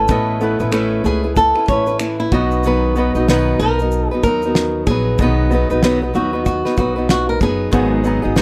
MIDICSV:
0, 0, Header, 1, 6, 480
1, 0, Start_track
1, 0, Tempo, 636267
1, 69, Time_signature, 4, 2, 24, 8
1, 6351, End_track
2, 0, Start_track
2, 0, Title_t, "Nylon-string guitar"
2, 0, Program_c, 0, 24
2, 0, Note_on_c, 0, 69, 108
2, 766, Note_off_c, 0, 69, 0
2, 799, Note_on_c, 0, 68, 90
2, 1032, Note_off_c, 0, 68, 0
2, 1035, Note_on_c, 0, 69, 99
2, 1255, Note_off_c, 0, 69, 0
2, 1272, Note_on_c, 0, 73, 90
2, 1509, Note_off_c, 0, 73, 0
2, 1512, Note_on_c, 0, 64, 78
2, 1645, Note_off_c, 0, 64, 0
2, 1658, Note_on_c, 0, 64, 83
2, 1751, Note_on_c, 0, 66, 96
2, 1754, Note_off_c, 0, 64, 0
2, 2680, Note_off_c, 0, 66, 0
2, 2712, Note_on_c, 0, 70, 95
2, 3089, Note_off_c, 0, 70, 0
2, 3089, Note_on_c, 0, 68, 95
2, 3185, Note_off_c, 0, 68, 0
2, 3194, Note_on_c, 0, 70, 100
2, 3669, Note_off_c, 0, 70, 0
2, 3672, Note_on_c, 0, 68, 107
2, 4639, Note_off_c, 0, 68, 0
2, 4642, Note_on_c, 0, 66, 85
2, 4860, Note_off_c, 0, 66, 0
2, 4872, Note_on_c, 0, 66, 90
2, 5109, Note_off_c, 0, 66, 0
2, 5118, Note_on_c, 0, 66, 84
2, 5337, Note_off_c, 0, 66, 0
2, 5361, Note_on_c, 0, 66, 82
2, 5497, Note_off_c, 0, 66, 0
2, 5500, Note_on_c, 0, 70, 87
2, 5596, Note_off_c, 0, 70, 0
2, 5603, Note_on_c, 0, 68, 99
2, 6351, Note_off_c, 0, 68, 0
2, 6351, End_track
3, 0, Start_track
3, 0, Title_t, "Grand piano"
3, 0, Program_c, 1, 0
3, 0, Control_c, 1, 64, 127
3, 65, Note_on_c, 1, 59, 70
3, 78, Note_on_c, 1, 69, 69
3, 86, Note_on_c, 1, 75, 81
3, 287, Note_off_c, 1, 59, 0
3, 294, Note_off_c, 1, 69, 0
3, 298, Note_off_c, 1, 75, 0
3, 308, Note_on_c, 1, 59, 70
3, 315, Note_on_c, 1, 57, 59
3, 324, Note_on_c, 1, 71, 70
3, 1189, Note_off_c, 1, 59, 0
3, 1192, Note_off_c, 1, 57, 0
3, 1197, Note_off_c, 1, 71, 0
3, 1752, Note_on_c, 1, 59, 75
3, 1759, Control_c, 1, 64, 0
3, 1761, Note_on_c, 1, 66, 66
3, 1767, Note_on_c, 1, 75, 88
3, 1911, Control_c, 1, 64, 127
3, 2191, Note_off_c, 1, 59, 0
3, 2195, Note_off_c, 1, 66, 0
3, 2198, Note_off_c, 1, 75, 0
3, 2229, Note_on_c, 1, 59, 68
3, 2239, Note_on_c, 1, 66, 61
3, 2250, Note_on_c, 1, 75, 71
3, 3110, Note_off_c, 1, 59, 0
3, 3114, Note_off_c, 1, 66, 0
3, 3120, Note_off_c, 1, 75, 0
3, 3918, Note_on_c, 1, 59, 72
3, 3924, Note_on_c, 1, 66, 66
3, 3929, Note_on_c, 1, 75, 80
3, 4134, Note_off_c, 1, 59, 0
3, 4137, Note_off_c, 1, 66, 0
3, 4139, Note_off_c, 1, 75, 0
3, 4150, Note_on_c, 1, 59, 67
3, 4159, Note_on_c, 1, 66, 56
3, 4163, Note_on_c, 1, 75, 73
3, 5030, Note_off_c, 1, 59, 0
3, 5035, Note_off_c, 1, 66, 0
3, 5036, Note_off_c, 1, 75, 0
3, 5836, Note_on_c, 1, 59, 75
3, 5840, Control_c, 1, 64, 0
3, 5844, Note_on_c, 1, 68, 70
3, 5847, Note_on_c, 1, 78, 77
3, 5979, Control_c, 1, 64, 127
3, 6053, Note_off_c, 1, 59, 0
3, 6057, Note_off_c, 1, 68, 0
3, 6059, Note_off_c, 1, 78, 0
3, 6078, Note_on_c, 1, 59, 66
3, 6081, Note_on_c, 1, 68, 63
3, 6090, Note_on_c, 1, 82, 68
3, 6351, Note_off_c, 1, 59, 0
3, 6351, Note_off_c, 1, 68, 0
3, 6351, Note_off_c, 1, 82, 0
3, 6351, End_track
4, 0, Start_track
4, 0, Title_t, "Steel-string acoustic guitar"
4, 0, Program_c, 2, 25
4, 64, Note_on_c, 2, 57, 69
4, 75, Note_on_c, 2, 61, 76
4, 78, Note_on_c, 2, 64, 82
4, 81, Note_on_c, 2, 71, 85
4, 299, Note_off_c, 2, 57, 0
4, 309, Note_on_c, 2, 57, 64
4, 310, Note_off_c, 2, 61, 0
4, 314, Note_off_c, 2, 64, 0
4, 315, Note_off_c, 2, 71, 0
4, 319, Note_on_c, 2, 61, 59
4, 324, Note_on_c, 2, 64, 68
4, 331, Note_on_c, 2, 71, 67
4, 442, Note_off_c, 2, 71, 0
4, 452, Note_off_c, 2, 64, 0
4, 452, Note_on_c, 2, 71, 61
4, 453, Note_off_c, 2, 57, 0
4, 458, Note_off_c, 2, 61, 0
4, 461, Note_on_c, 2, 64, 56
4, 475, Note_on_c, 2, 61, 52
4, 539, Note_off_c, 2, 61, 0
4, 539, Note_on_c, 2, 57, 89
4, 543, Note_off_c, 2, 64, 0
4, 548, Note_off_c, 2, 71, 0
4, 548, Note_on_c, 2, 61, 87
4, 552, Note_on_c, 2, 64, 104
4, 557, Note_on_c, 2, 71, 100
4, 776, Note_off_c, 2, 57, 0
4, 782, Note_off_c, 2, 61, 0
4, 785, Note_on_c, 2, 57, 67
4, 790, Note_off_c, 2, 64, 0
4, 791, Note_on_c, 2, 61, 58
4, 793, Note_off_c, 2, 71, 0
4, 801, Note_on_c, 2, 64, 68
4, 808, Note_on_c, 2, 71, 67
4, 923, Note_off_c, 2, 71, 0
4, 929, Note_off_c, 2, 64, 0
4, 931, Note_off_c, 2, 57, 0
4, 932, Note_on_c, 2, 71, 52
4, 934, Note_off_c, 2, 61, 0
4, 938, Note_on_c, 2, 64, 46
4, 952, Note_on_c, 2, 61, 39
4, 1159, Note_off_c, 2, 71, 0
4, 1168, Note_on_c, 2, 71, 54
4, 1173, Note_off_c, 2, 64, 0
4, 1182, Note_on_c, 2, 64, 48
4, 1183, Note_off_c, 2, 61, 0
4, 1197, Note_on_c, 2, 61, 46
4, 1267, Note_off_c, 2, 71, 0
4, 1274, Note_off_c, 2, 64, 0
4, 1275, Note_off_c, 2, 61, 0
4, 1276, Note_on_c, 2, 57, 57
4, 1284, Note_on_c, 2, 61, 65
4, 1293, Note_on_c, 2, 64, 59
4, 1299, Note_on_c, 2, 71, 61
4, 1402, Note_off_c, 2, 71, 0
4, 1411, Note_on_c, 2, 71, 53
4, 1416, Note_off_c, 2, 64, 0
4, 1417, Note_off_c, 2, 57, 0
4, 1421, Note_off_c, 2, 61, 0
4, 1425, Note_on_c, 2, 64, 48
4, 1435, Note_on_c, 2, 61, 43
4, 1747, Note_on_c, 2, 54, 59
4, 1748, Note_off_c, 2, 71, 0
4, 1750, Note_off_c, 2, 61, 0
4, 1753, Note_on_c, 2, 59, 64
4, 1755, Note_off_c, 2, 64, 0
4, 1760, Note_on_c, 2, 63, 62
4, 1768, Note_on_c, 2, 71, 70
4, 1988, Note_off_c, 2, 54, 0
4, 1991, Note_off_c, 2, 59, 0
4, 1994, Note_on_c, 2, 47, 78
4, 1995, Note_off_c, 2, 63, 0
4, 1999, Note_off_c, 2, 71, 0
4, 2003, Note_on_c, 2, 54, 78
4, 2004, Note_on_c, 2, 51, 72
4, 2009, Note_on_c, 2, 63, 73
4, 2010, Note_on_c, 2, 59, 83
4, 2016, Note_on_c, 2, 71, 86
4, 2225, Note_off_c, 2, 54, 0
4, 2232, Note_off_c, 2, 47, 0
4, 2232, Note_off_c, 2, 59, 0
4, 2234, Note_on_c, 2, 54, 62
4, 2237, Note_off_c, 2, 51, 0
4, 2239, Note_off_c, 2, 63, 0
4, 2241, Note_on_c, 2, 59, 61
4, 2243, Note_off_c, 2, 71, 0
4, 2249, Note_on_c, 2, 63, 60
4, 2256, Note_on_c, 2, 71, 67
4, 2365, Note_off_c, 2, 71, 0
4, 2373, Note_off_c, 2, 63, 0
4, 2375, Note_on_c, 2, 71, 60
4, 2376, Note_off_c, 2, 54, 0
4, 2379, Note_off_c, 2, 59, 0
4, 2382, Note_on_c, 2, 63, 57
4, 2389, Note_on_c, 2, 59, 51
4, 2397, Note_on_c, 2, 54, 52
4, 2470, Note_off_c, 2, 71, 0
4, 2473, Note_off_c, 2, 63, 0
4, 2474, Note_off_c, 2, 59, 0
4, 2476, Note_on_c, 2, 47, 97
4, 2478, Note_off_c, 2, 54, 0
4, 2483, Note_on_c, 2, 51, 94
4, 2483, Note_on_c, 2, 59, 86
4, 2487, Note_on_c, 2, 54, 92
4, 2490, Note_on_c, 2, 63, 99
4, 2490, Note_on_c, 2, 71, 105
4, 2707, Note_off_c, 2, 54, 0
4, 2713, Note_off_c, 2, 47, 0
4, 2716, Note_off_c, 2, 51, 0
4, 2716, Note_off_c, 2, 59, 0
4, 2716, Note_on_c, 2, 54, 58
4, 2719, Note_off_c, 2, 63, 0
4, 2720, Note_off_c, 2, 71, 0
4, 2724, Note_on_c, 2, 59, 57
4, 2730, Note_on_c, 2, 63, 63
4, 2739, Note_on_c, 2, 71, 61
4, 2857, Note_off_c, 2, 54, 0
4, 2861, Note_off_c, 2, 59, 0
4, 2864, Note_off_c, 2, 63, 0
4, 2868, Note_off_c, 2, 71, 0
4, 2878, Note_on_c, 2, 63, 53
4, 2885, Note_on_c, 2, 59, 41
4, 2893, Note_on_c, 2, 54, 42
4, 3102, Note_on_c, 2, 71, 58
4, 3106, Note_off_c, 2, 63, 0
4, 3109, Note_off_c, 2, 59, 0
4, 3113, Note_off_c, 2, 54, 0
4, 3114, Note_on_c, 2, 63, 49
4, 3122, Note_on_c, 2, 59, 48
4, 3127, Note_on_c, 2, 54, 44
4, 3193, Note_off_c, 2, 54, 0
4, 3194, Note_off_c, 2, 71, 0
4, 3200, Note_off_c, 2, 63, 0
4, 3201, Note_off_c, 2, 59, 0
4, 3202, Note_on_c, 2, 54, 61
4, 3210, Note_on_c, 2, 59, 57
4, 3219, Note_on_c, 2, 63, 58
4, 3225, Note_on_c, 2, 71, 59
4, 3340, Note_off_c, 2, 54, 0
4, 3344, Note_off_c, 2, 59, 0
4, 3348, Note_off_c, 2, 63, 0
4, 3351, Note_off_c, 2, 71, 0
4, 3358, Note_on_c, 2, 63, 46
4, 3367, Note_on_c, 2, 59, 44
4, 3371, Note_on_c, 2, 54, 47
4, 3671, Note_off_c, 2, 54, 0
4, 3680, Note_on_c, 2, 54, 62
4, 3682, Note_off_c, 2, 63, 0
4, 3686, Note_off_c, 2, 59, 0
4, 3694, Note_on_c, 2, 59, 61
4, 3698, Note_on_c, 2, 63, 60
4, 3701, Note_on_c, 2, 71, 66
4, 3915, Note_off_c, 2, 54, 0
4, 3922, Note_off_c, 2, 59, 0
4, 3923, Note_off_c, 2, 63, 0
4, 3925, Note_off_c, 2, 71, 0
4, 3928, Note_on_c, 2, 47, 79
4, 3931, Note_on_c, 2, 51, 73
4, 3936, Note_on_c, 2, 54, 75
4, 3937, Note_on_c, 2, 59, 86
4, 3940, Note_on_c, 2, 63, 83
4, 3942, Note_on_c, 2, 71, 89
4, 4145, Note_off_c, 2, 54, 0
4, 4154, Note_on_c, 2, 54, 58
4, 4155, Note_off_c, 2, 59, 0
4, 4159, Note_off_c, 2, 47, 0
4, 4160, Note_off_c, 2, 51, 0
4, 4164, Note_on_c, 2, 59, 61
4, 4165, Note_off_c, 2, 63, 0
4, 4166, Note_off_c, 2, 71, 0
4, 4174, Note_on_c, 2, 63, 65
4, 4181, Note_on_c, 2, 71, 73
4, 4296, Note_off_c, 2, 54, 0
4, 4297, Note_off_c, 2, 71, 0
4, 4300, Note_off_c, 2, 63, 0
4, 4301, Note_off_c, 2, 59, 0
4, 4306, Note_on_c, 2, 71, 61
4, 4309, Note_on_c, 2, 63, 58
4, 4318, Note_on_c, 2, 59, 51
4, 4321, Note_on_c, 2, 54, 51
4, 4395, Note_on_c, 2, 47, 90
4, 4396, Note_off_c, 2, 54, 0
4, 4396, Note_off_c, 2, 71, 0
4, 4397, Note_off_c, 2, 63, 0
4, 4398, Note_off_c, 2, 59, 0
4, 4403, Note_on_c, 2, 51, 86
4, 4405, Note_on_c, 2, 54, 105
4, 4407, Note_on_c, 2, 59, 99
4, 4409, Note_on_c, 2, 63, 90
4, 4413, Note_on_c, 2, 71, 107
4, 4530, Note_off_c, 2, 71, 0
4, 4536, Note_off_c, 2, 47, 0
4, 4538, Note_off_c, 2, 63, 0
4, 4539, Note_on_c, 2, 71, 48
4, 4540, Note_off_c, 2, 51, 0
4, 4541, Note_off_c, 2, 54, 0
4, 4542, Note_off_c, 2, 59, 0
4, 4547, Note_on_c, 2, 63, 46
4, 4553, Note_on_c, 2, 59, 44
4, 4561, Note_on_c, 2, 54, 39
4, 4620, Note_off_c, 2, 54, 0
4, 4629, Note_on_c, 2, 54, 67
4, 4630, Note_off_c, 2, 59, 0
4, 4632, Note_off_c, 2, 71, 0
4, 4637, Note_off_c, 2, 63, 0
4, 4639, Note_on_c, 2, 59, 59
4, 4649, Note_on_c, 2, 63, 69
4, 4655, Note_on_c, 2, 71, 68
4, 4765, Note_off_c, 2, 71, 0
4, 4771, Note_off_c, 2, 63, 0
4, 4773, Note_off_c, 2, 54, 0
4, 4774, Note_on_c, 2, 71, 56
4, 4778, Note_off_c, 2, 59, 0
4, 4780, Note_on_c, 2, 63, 49
4, 4791, Note_on_c, 2, 59, 46
4, 4796, Note_on_c, 2, 54, 40
4, 5008, Note_off_c, 2, 71, 0
4, 5012, Note_off_c, 2, 63, 0
4, 5017, Note_on_c, 2, 71, 55
4, 5018, Note_off_c, 2, 59, 0
4, 5021, Note_on_c, 2, 63, 52
4, 5025, Note_off_c, 2, 54, 0
4, 5028, Note_on_c, 2, 59, 51
4, 5035, Note_on_c, 2, 54, 51
4, 5094, Note_off_c, 2, 54, 0
4, 5103, Note_on_c, 2, 54, 55
4, 5107, Note_off_c, 2, 59, 0
4, 5111, Note_off_c, 2, 71, 0
4, 5113, Note_off_c, 2, 63, 0
4, 5116, Note_on_c, 2, 59, 57
4, 5121, Note_on_c, 2, 63, 62
4, 5129, Note_on_c, 2, 71, 64
4, 5241, Note_off_c, 2, 71, 0
4, 5250, Note_on_c, 2, 71, 53
4, 5251, Note_off_c, 2, 54, 0
4, 5254, Note_off_c, 2, 63, 0
4, 5257, Note_off_c, 2, 59, 0
4, 5263, Note_on_c, 2, 63, 47
4, 5268, Note_on_c, 2, 59, 43
4, 5274, Note_on_c, 2, 54, 41
4, 5572, Note_off_c, 2, 54, 0
4, 5581, Note_off_c, 2, 59, 0
4, 5581, Note_on_c, 2, 54, 56
4, 5588, Note_off_c, 2, 71, 0
4, 5590, Note_off_c, 2, 63, 0
4, 5590, Note_on_c, 2, 59, 69
4, 5599, Note_on_c, 2, 63, 66
4, 5607, Note_on_c, 2, 71, 69
4, 5814, Note_off_c, 2, 54, 0
4, 5818, Note_off_c, 2, 59, 0
4, 5819, Note_on_c, 2, 44, 77
4, 5820, Note_on_c, 2, 51, 80
4, 5823, Note_off_c, 2, 63, 0
4, 5823, Note_on_c, 2, 54, 77
4, 5827, Note_on_c, 2, 59, 77
4, 5832, Note_off_c, 2, 71, 0
4, 5832, Note_on_c, 2, 63, 84
4, 5835, Note_on_c, 2, 68, 79
4, 6053, Note_off_c, 2, 54, 0
4, 6062, Note_on_c, 2, 54, 60
4, 6063, Note_off_c, 2, 59, 0
4, 6065, Note_off_c, 2, 44, 0
4, 6065, Note_off_c, 2, 51, 0
4, 6067, Note_off_c, 2, 63, 0
4, 6072, Note_on_c, 2, 59, 65
4, 6073, Note_off_c, 2, 68, 0
4, 6076, Note_on_c, 2, 63, 66
4, 6086, Note_on_c, 2, 68, 77
4, 6192, Note_off_c, 2, 68, 0
4, 6201, Note_off_c, 2, 63, 0
4, 6201, Note_on_c, 2, 68, 60
4, 6210, Note_off_c, 2, 54, 0
4, 6210, Note_off_c, 2, 59, 0
4, 6210, Note_on_c, 2, 63, 60
4, 6219, Note_on_c, 2, 59, 57
4, 6225, Note_on_c, 2, 54, 49
4, 6302, Note_off_c, 2, 54, 0
4, 6304, Note_off_c, 2, 68, 0
4, 6304, Note_on_c, 2, 44, 91
4, 6307, Note_off_c, 2, 59, 0
4, 6308, Note_off_c, 2, 63, 0
4, 6309, Note_on_c, 2, 51, 90
4, 6311, Note_on_c, 2, 54, 96
4, 6317, Note_on_c, 2, 59, 86
4, 6318, Note_on_c, 2, 63, 109
4, 6323, Note_on_c, 2, 68, 98
4, 6351, Note_off_c, 2, 44, 0
4, 6351, Note_off_c, 2, 51, 0
4, 6351, Note_off_c, 2, 54, 0
4, 6351, Note_off_c, 2, 59, 0
4, 6351, Note_off_c, 2, 63, 0
4, 6351, Note_off_c, 2, 68, 0
4, 6351, End_track
5, 0, Start_track
5, 0, Title_t, "Upright bass"
5, 0, Program_c, 3, 32
5, 69, Note_on_c, 3, 33, 102
5, 423, Note_off_c, 3, 33, 0
5, 453, Note_on_c, 3, 33, 89
5, 762, Note_off_c, 3, 33, 0
5, 789, Note_on_c, 3, 37, 88
5, 1143, Note_off_c, 3, 37, 0
5, 1274, Note_on_c, 3, 33, 80
5, 1722, Note_off_c, 3, 33, 0
5, 1752, Note_on_c, 3, 35, 92
5, 2345, Note_off_c, 3, 35, 0
5, 2377, Note_on_c, 3, 35, 78
5, 2684, Note_off_c, 3, 35, 0
5, 2712, Note_on_c, 3, 35, 92
5, 3064, Note_off_c, 3, 35, 0
5, 3195, Note_on_c, 3, 39, 83
5, 3642, Note_off_c, 3, 39, 0
5, 3673, Note_on_c, 3, 34, 83
5, 3892, Note_off_c, 3, 34, 0
5, 3915, Note_on_c, 3, 35, 100
5, 4266, Note_off_c, 3, 35, 0
5, 4299, Note_on_c, 3, 35, 93
5, 4606, Note_off_c, 3, 35, 0
5, 4638, Note_on_c, 3, 39, 86
5, 4987, Note_off_c, 3, 39, 0
5, 5111, Note_on_c, 3, 35, 79
5, 5560, Note_off_c, 3, 35, 0
5, 5594, Note_on_c, 3, 30, 82
5, 5813, Note_off_c, 3, 30, 0
5, 5828, Note_on_c, 3, 32, 106
5, 6183, Note_off_c, 3, 32, 0
5, 6225, Note_on_c, 3, 32, 78
5, 6351, Note_off_c, 3, 32, 0
5, 6351, End_track
6, 0, Start_track
6, 0, Title_t, "Drums"
6, 60, Note_on_c, 9, 82, 78
6, 67, Note_on_c, 9, 36, 107
6, 136, Note_off_c, 9, 82, 0
6, 143, Note_off_c, 9, 36, 0
6, 307, Note_on_c, 9, 82, 43
6, 383, Note_off_c, 9, 82, 0
6, 449, Note_on_c, 9, 82, 43
6, 525, Note_off_c, 9, 82, 0
6, 547, Note_on_c, 9, 26, 96
6, 549, Note_on_c, 9, 82, 61
6, 622, Note_off_c, 9, 26, 0
6, 624, Note_off_c, 9, 82, 0
6, 792, Note_on_c, 9, 82, 44
6, 867, Note_off_c, 9, 82, 0
6, 1028, Note_on_c, 9, 82, 78
6, 1030, Note_on_c, 9, 36, 74
6, 1103, Note_off_c, 9, 82, 0
6, 1105, Note_off_c, 9, 36, 0
6, 1174, Note_on_c, 9, 26, 34
6, 1250, Note_off_c, 9, 26, 0
6, 1268, Note_on_c, 9, 82, 53
6, 1271, Note_on_c, 9, 36, 92
6, 1343, Note_off_c, 9, 82, 0
6, 1346, Note_off_c, 9, 36, 0
6, 1407, Note_on_c, 9, 82, 52
6, 1482, Note_off_c, 9, 82, 0
6, 1505, Note_on_c, 9, 26, 98
6, 1507, Note_on_c, 9, 82, 74
6, 1581, Note_off_c, 9, 26, 0
6, 1583, Note_off_c, 9, 82, 0
6, 1749, Note_on_c, 9, 82, 48
6, 1750, Note_on_c, 9, 36, 102
6, 1825, Note_off_c, 9, 36, 0
6, 1825, Note_off_c, 9, 82, 0
6, 1895, Note_on_c, 9, 82, 42
6, 1971, Note_off_c, 9, 82, 0
6, 1987, Note_on_c, 9, 82, 77
6, 2062, Note_off_c, 9, 82, 0
6, 2231, Note_on_c, 9, 82, 48
6, 2307, Note_off_c, 9, 82, 0
6, 2377, Note_on_c, 9, 82, 46
6, 2452, Note_off_c, 9, 82, 0
6, 2478, Note_on_c, 9, 38, 96
6, 2480, Note_on_c, 9, 82, 65
6, 2554, Note_off_c, 9, 38, 0
6, 2555, Note_off_c, 9, 82, 0
6, 2717, Note_on_c, 9, 82, 44
6, 2793, Note_off_c, 9, 82, 0
6, 2859, Note_on_c, 9, 82, 50
6, 2934, Note_off_c, 9, 82, 0
6, 2955, Note_on_c, 9, 82, 77
6, 3030, Note_off_c, 9, 82, 0
6, 3194, Note_on_c, 9, 82, 56
6, 3195, Note_on_c, 9, 36, 90
6, 3270, Note_off_c, 9, 82, 0
6, 3271, Note_off_c, 9, 36, 0
6, 3336, Note_on_c, 9, 82, 54
6, 3411, Note_off_c, 9, 82, 0
6, 3434, Note_on_c, 9, 38, 106
6, 3436, Note_on_c, 9, 82, 74
6, 3509, Note_off_c, 9, 38, 0
6, 3511, Note_off_c, 9, 82, 0
6, 3670, Note_on_c, 9, 82, 49
6, 3674, Note_on_c, 9, 36, 96
6, 3746, Note_off_c, 9, 82, 0
6, 3749, Note_off_c, 9, 36, 0
6, 3911, Note_on_c, 9, 82, 83
6, 3915, Note_on_c, 9, 36, 102
6, 3986, Note_off_c, 9, 82, 0
6, 3990, Note_off_c, 9, 36, 0
6, 4158, Note_on_c, 9, 82, 46
6, 4234, Note_off_c, 9, 82, 0
6, 4302, Note_on_c, 9, 82, 49
6, 4378, Note_off_c, 9, 82, 0
6, 4396, Note_on_c, 9, 38, 108
6, 4397, Note_on_c, 9, 82, 59
6, 4471, Note_off_c, 9, 38, 0
6, 4473, Note_off_c, 9, 82, 0
6, 4634, Note_on_c, 9, 82, 42
6, 4710, Note_off_c, 9, 82, 0
6, 4872, Note_on_c, 9, 82, 79
6, 4875, Note_on_c, 9, 36, 78
6, 4947, Note_off_c, 9, 82, 0
6, 4950, Note_off_c, 9, 36, 0
6, 5021, Note_on_c, 9, 38, 33
6, 5096, Note_off_c, 9, 38, 0
6, 5107, Note_on_c, 9, 82, 58
6, 5112, Note_on_c, 9, 36, 92
6, 5182, Note_off_c, 9, 82, 0
6, 5188, Note_off_c, 9, 36, 0
6, 5350, Note_on_c, 9, 38, 107
6, 5352, Note_on_c, 9, 82, 73
6, 5426, Note_off_c, 9, 38, 0
6, 5428, Note_off_c, 9, 82, 0
6, 5589, Note_on_c, 9, 82, 51
6, 5590, Note_on_c, 9, 36, 97
6, 5664, Note_off_c, 9, 82, 0
6, 5665, Note_off_c, 9, 36, 0
6, 5827, Note_on_c, 9, 82, 80
6, 5829, Note_on_c, 9, 36, 108
6, 5902, Note_off_c, 9, 82, 0
6, 5905, Note_off_c, 9, 36, 0
6, 6066, Note_on_c, 9, 82, 46
6, 6142, Note_off_c, 9, 82, 0
6, 6309, Note_on_c, 9, 38, 101
6, 6311, Note_on_c, 9, 82, 65
6, 6351, Note_off_c, 9, 38, 0
6, 6351, Note_off_c, 9, 82, 0
6, 6351, End_track
0, 0, End_of_file